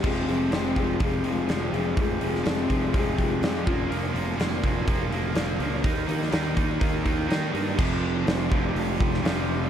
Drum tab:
CC |x---------------|----------------|----------------|----------------|
HH |--o-o-o-o-o-o-o-|o-o-o-o-o-o-o-o-|o-o-o-o-o-o-o-o-|o-o-o-o-o-o-o-o-|
SD |----o-------o---|---oo-------o---|----o-------o---|---oo-------o---|
BD |o-----o-o-------|o-----o-o-o---o-|------o-o-------|o-----o-o-o-----|

CC |x---------------|
HH |----o---o---o---|
SD |----o------oo---|
BD |o-----o---o-----|